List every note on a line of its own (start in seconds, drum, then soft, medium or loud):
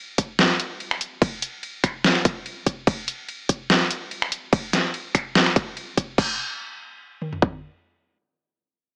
0.18 kick medium
0.18 closed hi-hat medium
0.39 snare loud
0.39 ride medium
0.60 closed hi-hat medium
0.80 ride soft
0.91 finger snap medium
1.01 closed hi-hat medium
1.22 kick loud
1.22 ride medium
1.42 closed hi-hat medium
1.63 ride soft
1.84 finger snap medium
1.84 kick medium
1.84 closed hi-hat medium
2.04 snare loud
2.04 ride medium
2.15 finger snap medium
2.25 kick loud
2.25 closed hi-hat medium
2.46 ride soft
2.67 kick medium
2.67 closed hi-hat medium
2.87 kick loud
2.87 ride medium
3.08 closed hi-hat medium
3.29 ride soft
3.49 kick medium
3.49 closed hi-hat medium
3.70 snare loud
3.70 ride medium
3.91 closed hi-hat medium
4.11 ride soft
4.22 finger snap medium
4.32 closed hi-hat medium
4.53 kick loud
4.53 ride medium
4.73 snare medium
4.73 closed hi-hat medium
4.94 ride medium
5.15 finger snap medium
5.15 kick medium
5.15 closed hi-hat medium
5.35 snare loud
5.35 ride medium
5.46 finger snap medium
5.56 kick loud
5.56 closed hi-hat medium
5.77 ride soft
5.97 kick medium
5.97 closed hi-hat medium
6.18 kick loud
6.18 crash medium
7.22 mid tom medium
7.33 floor tom medium
7.42 kick loud